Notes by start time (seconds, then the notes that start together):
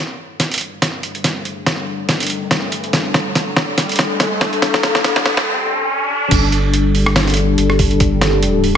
Already playing: G3 D4 A4, riser
0.40 snare, closed hi-hat
0.52 closed hi-hat
0.54 closed hi-hat
0.58 closed hi-hat
0.61 closed hi-hat
0.82 snare, closed hi-hat
1.03 closed hi-hat
1.15 closed hi-hat
1.24 snare, closed hi-hat
1.45 closed hi-hat
1.67 snare, closed hi-hat
2.09 snare, closed hi-hat
2.20 closed hi-hat
2.23 closed hi-hat
2.27 closed hi-hat
2.30 closed hi-hat
2.51 snare, closed hi-hat
2.72 closed hi-hat
2.84 closed hi-hat
2.93 snare, closed hi-hat
3.14 snare, closed hi-hat
3.35 snare, closed hi-hat
3.57 snare
3.78 snare, closed hi-hat
3.89 closed hi-hat
3.92 closed hi-hat
3.96 snare, closed hi-hat
3.99 closed hi-hat
4.20 snare, closed hi-hat
4.41 snare, closed hi-hat
4.53 closed hi-hat
4.62 snare, closed hi-hat
4.74 snare
4.83 snare, closed hi-hat
4.95 snare
5.04 snare, closed hi-hat
5.16 snare
5.26 snare
5.37 snare
6.31 G1 G3 D4 A4, kick, closed hi-hat, crash
6.52 closed hi-hat
6.74 closed hi-hat
6.95 open hi-hat
7.06 cross-stick
7.16 snare, closed hi-hat
7.28 closed hi-hat
7.30 closed hi-hat
7.34 closed hi-hat
7.37 closed hi-hat
7.58 G1, closed hi-hat
7.70 cross-stick
7.79 kick, open hi-hat
7.91 closed hi-hat
8.00 kick, closed hi-hat
8.21 snare, closed hi-hat
8.43 closed hi-hat
8.64 open hi-hat